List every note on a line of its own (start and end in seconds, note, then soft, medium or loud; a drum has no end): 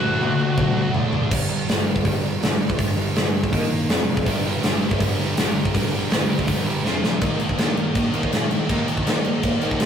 0.00 0.16 A2 medium
0.00 0.19 D3 loud
0.00 1.11 D3 medium
0.00 0.19 F#3 medium
0.00 0.20 A3 medium
0.00 1.12 A3 loud
0.00 0.20 D4 loud
0.00 1.10 D4 loud
0.00 0.91 F#4 medium
0.00 0.95 F#5 loud
0.20 0.49 D2 medium
0.20 0.37 D3 medium
0.20 0.38 F#3 loud
0.20 0.38 A3 medium
0.20 0.39 D4 medium
0.20 high tom medium
0.38 0.56 D3 medium
0.38 0.56 F#3 medium
0.38 0.56 A3 medium
0.38 0.57 D4 medium
0.38 high tom medium
0.56 0.72 D2 loud
0.56 1.29 D3 medium
0.56 0.93 D3 loud
0.56 0.93 F#3 loud
0.56 0.94 A3 loud
0.56 1.30 A3 medium
0.56 0.95 D4 loud
0.56 1.31 D4 medium
0.56 kick loud
0.56 mid tom medium
0.75 0.89 D2 medium
0.93 1.22 D2 medium
0.93 1.11 D3 medium
0.93 1.11 F#3 medium
0.93 1.12 A3 medium
0.93 1.13 D4 medium
0.93 floor tom loud
1.11 1.30 D3 medium
1.11 1.29 D3 medium
1.11 1.30 F#3 medium
1.11 1.30 A3 medium
1.11 1.29 D4 loud
1.11 1.31 D4 loud
1.11 floor tom loud
1.30 1.66 G1 medium
1.30 1.48 G2 loud
1.30 1.48 D3 loud
1.30 1.49 G3 loud
1.30 kick loud
1.30 crash loud
1.49 1.66 G2 medium
1.49 1.66 D3 medium
1.49 1.67 G3 loud
1.66 2.03 G1 medium
1.66 1.84 G2 loud
1.66 1.84 D3 loud
1.66 1.85 G3 loud
1.66 snare loud
1.66 open hi-hat medium
1.85 2.02 G2 medium
1.85 2.03 D3 medium
1.85 2.03 G3 medium
1.96 kick medium
2.03 2.22 G1 loud
2.03 2.21 G2 loud
2.03 2.21 D3 loud
2.03 2.22 G3 loud
2.03 kick medium
2.03 open hi-hat medium
2.22 2.40 G1 medium
2.22 2.39 G2 medium
2.22 2.39 D3 medium
2.22 2.40 G3 medium
2.40 2.59 G1 medium
2.40 2.57 G2 loud
2.40 2.58 D3 loud
2.40 2.58 G3 loud
2.40 snare loud
2.40 open hi-hat medium
2.58 2.78 G1 loud
2.58 2.76 G2 medium
2.58 2.76 D3 medium
2.58 2.77 G3 loud
2.70 kick loud
2.77 2.96 G1 medium
2.77 2.95 G2 loud
2.77 2.95 D3 loud
2.77 2.96 G3 loud
2.77 kick loud
2.77 open hi-hat medium
2.96 3.14 G1 loud
2.96 3.13 G2 medium
2.96 3.14 D3 medium
2.96 3.14 G3 medium
3.14 3.32 G2 medium
3.14 3.33 G2 medium
3.14 3.33 D3 loud
3.14 3.34 G3 loud
3.14 snare loud
3.14 open hi-hat medium
3.33 3.52 D2 medium
3.33 3.51 G2 medium
3.33 3.51 D3 medium
3.33 3.52 G3 medium
3.44 kick medium
3.52 3.70 D#2 loud
3.52 3.69 D#3 loud
3.52 3.70 A#3 loud
3.52 3.71 D#4 loud
3.52 kick loud
3.52 open hi-hat medium
3.71 3.89 D#2 medium
3.71 3.88 D#3 medium
3.71 3.88 A#3 medium
3.71 3.89 D#4 medium
3.89 4.07 F1 loud
3.89 4.06 F2 medium
3.89 4.06 C3 loud
3.89 4.07 F3 loud
3.89 snare loud
3.89 open hi-hat medium
4.07 4.26 F1 loud
4.07 4.24 F2 medium
4.07 4.25 C3 loud
4.07 4.25 F3 medium
4.17 kick medium
4.26 4.62 G1 medium
4.26 4.44 G2 loud
4.26 4.44 D3 loud
4.26 4.80 G3 loud
4.26 4.45 G3 loud
4.26 4.81 D4 loud
4.26 4.81 G4 loud
4.26 4.80 A#4 loud
4.26 kick loud
4.26 open hi-hat medium
4.44 4.61 G2 medium
4.44 4.62 D3 medium
4.44 4.63 G3 loud
4.63 4.99 G1 medium
4.63 4.80 G2 loud
4.63 4.81 D3 loud
4.63 4.82 G3 loud
4.63 snare loud
4.63 open hi-hat medium
4.81 4.99 G2 medium
4.81 4.99 D3 loud
4.81 4.99 G3 loud
4.81 5.36 G3 medium
4.81 5.37 D4 medium
4.81 5.36 G4 medium
4.81 5.36 A#4 medium
4.91 kick medium
5.00 5.18 G1 loud
5.00 5.17 G2 loud
5.00 5.18 D3 loud
5.00 5.18 G3 loud
5.00 kick loud
5.00 open hi-hat medium
5.18 5.36 G1 medium
5.18 5.35 G2 medium
5.18 5.35 D3 medium
5.18 5.36 G3 loud
5.36 5.55 G1 loud
5.36 5.54 G2 loud
5.36 5.54 D3 loud
5.36 5.72 G3 medium
5.36 5.55 G3 loud
5.36 5.73 D4 medium
5.36 5.74 G4 medium
5.36 snare loud
5.36 open hi-hat medium
5.40 5.74 A#4 medium
5.55 5.73 G1 loud
5.55 5.72 G2 medium
5.55 5.73 D3 medium
5.55 5.74 G3 loud
5.65 kick loud
5.73 5.92 G1 loud
5.73 5.91 G2 medium
5.73 5.92 D3 loud
5.73 6.28 G3 loud
5.73 5.92 G3 loud
5.73 6.28 D4 loud
5.73 6.29 G4 loud
5.73 6.28 A#4 loud
5.73 kick loud
5.73 open hi-hat medium
5.92 6.10 G1 medium
5.92 6.09 G2 medium
5.92 6.10 D3 loud
5.92 6.11 G3 loud
6.11 6.27 G2 medium
6.11 6.29 G2 medium
6.11 6.28 D3 loud
6.11 6.29 G3 loud
6.11 snare loud
6.11 open hi-hat medium
6.29 6.47 D2 medium
6.29 6.46 G2 medium
6.29 6.46 D3 medium
6.29 6.47 G3 loud
6.29 6.85 G3 medium
6.29 6.84 D4 medium
6.29 6.84 G4 medium
6.29 6.83 A#4 medium
6.39 kick medium
6.47 6.65 F1 loud
6.47 6.64 G2 medium
6.47 6.65 D3 loud
6.47 6.65 G3 loud
6.47 kick loud
6.47 open hi-hat medium
6.65 6.84 G1 medium
6.65 6.83 G2 medium
6.65 6.83 D3 medium
6.65 6.83 G3 medium
6.84 7.02 F1 loud
6.84 7.01 F2 loud
6.84 7.02 C3 loud
6.84 7.20 F3 medium
6.84 7.02 F3 loud
6.84 7.21 C4 medium
6.84 7.21 F4 medium
6.84 7.22 C5 medium
6.84 snare medium
7.02 7.20 D2 loud
7.02 7.20 F2 medium
7.02 7.20 C3 medium
7.02 7.21 F3 loud
7.02 snare loud
7.21 7.34 D#2 medium
7.21 7.79 D#3 medium
7.21 7.38 D#3 medium
7.21 7.78 G3 medium
7.21 7.38 A#3 medium
7.21 7.77 A#3 medium
7.21 7.39 D#4 medium
7.21 7.77 D#4 loud
7.21 7.75 G4 medium
7.21 kick loud
7.21 crash medium
7.39 7.52 D#2 medium
7.39 7.56 D#3 medium
7.39 7.56 A#3 medium
7.39 crash medium
7.49 kick medium
7.58 7.70 D#2 medium
7.58 7.75 D#3 loud
7.58 7.75 A#3 medium
7.58 7.76 D#4 loud
7.58 snare loud
7.58 crash medium
7.76 7.93 D#3 medium
7.76 7.89 D#3 medium
7.76 8.68 D#3 medium
7.76 8.70 G3 medium
7.76 7.93 A#3 medium
7.76 8.70 A#3 medium
7.76 8.68 D#4 medium
7.76 8.72 G4 medium
7.76 crash medium
7.95 8.07 D#2 loud
7.95 8.11 D#3 medium
7.95 8.12 A#3 medium
7.95 kick loud
7.95 crash medium
8.13 8.26 D#2 medium
8.13 8.31 D#3 medium
8.13 8.31 A#3 medium
8.13 8.31 D#4 loud
8.13 crash medium
8.23 kick medium
8.32 8.56 A#2 medium
8.32 8.49 D#3 medium
8.32 8.49 A#3 medium
8.32 snare loud
8.32 crash medium
8.51 8.67 D#3 medium
8.51 8.68 A#3 medium
8.51 crash medium
8.69 8.81 D#2 medium
8.69 8.86 D#3 medium
8.69 9.24 D#3 medium
8.69 9.27 G3 medium
8.69 8.87 A#3 medium
8.69 9.26 A#3 medium
8.69 8.87 D#4 medium
8.69 9.24 D#4 loud
8.69 9.24 G4 loud
8.69 kick loud
8.69 crash medium
8.87 8.99 D#2 medium
8.87 9.04 D#3 medium
8.87 9.05 A#3 medium
8.87 crash medium
8.97 kick medium
9.07 9.19 D#2 medium
9.07 9.24 D#3 medium
9.07 9.24 A#3 medium
9.07 9.24 D#4 loud
9.07 snare loud
9.07 crash medium
9.24 9.38 D#2 medium
9.24 9.42 D#3 medium
9.24 9.86 D#3 medium
9.24 9.86 G3 medium
9.24 9.86 A#3 medium
9.24 9.42 A#3 medium
9.24 9.86 D#4 medium
9.24 9.86 G4 medium
9.24 crash medium
9.43 9.55 D#2 medium
9.43 9.60 D#3 medium
9.43 9.60 A#3 medium
9.43 kick loud
9.43 crash medium
9.62 9.74 D#2 medium
9.62 9.79 D#3 medium
9.62 9.80 A#3 loud
9.62 9.80 D#4 loud
9.62 crash medium
9.71 kick medium
9.80 9.86 A2 medium
9.80 9.86 D#3 medium
9.80 9.86 A#3 medium
9.80 snare loud
9.80 crash medium